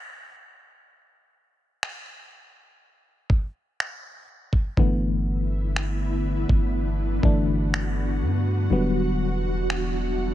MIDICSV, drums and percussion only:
0, 0, Header, 1, 2, 480
1, 0, Start_track
1, 0, Tempo, 983607
1, 409, Time_signature, 4, 2, 24, 8
1, 5046, End_track
2, 0, Start_track
2, 0, Title_t, "Drums"
2, 893, Note_on_c, 9, 26, 104
2, 942, Note_off_c, 9, 26, 0
2, 1609, Note_on_c, 9, 36, 97
2, 1658, Note_off_c, 9, 36, 0
2, 1855, Note_on_c, 9, 26, 112
2, 1904, Note_off_c, 9, 26, 0
2, 2209, Note_on_c, 9, 36, 90
2, 2258, Note_off_c, 9, 36, 0
2, 2329, Note_on_c, 9, 36, 105
2, 2378, Note_off_c, 9, 36, 0
2, 2813, Note_on_c, 9, 26, 100
2, 2862, Note_off_c, 9, 26, 0
2, 3169, Note_on_c, 9, 36, 85
2, 3218, Note_off_c, 9, 36, 0
2, 3530, Note_on_c, 9, 36, 94
2, 3578, Note_off_c, 9, 36, 0
2, 3776, Note_on_c, 9, 26, 110
2, 3825, Note_off_c, 9, 26, 0
2, 4734, Note_on_c, 9, 26, 98
2, 4783, Note_off_c, 9, 26, 0
2, 5046, End_track
0, 0, End_of_file